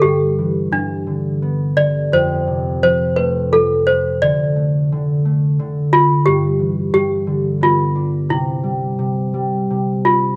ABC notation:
X:1
M:3/4
L:1/8
Q:1/4=86
K:C
V:1 name="Toy piano"
G2 D3 d | c2 c B A c | d2 z3 F | G2 G2 F2 |
E4 z F |]
V:2 name="Harp" clef=bass
G,, E, G,, D, B, D, | F,, C, F, A, F,2 | D, A, D, A, D,2 | G,, E, G,, D, B, D |
C, G, C, G, C,2 |]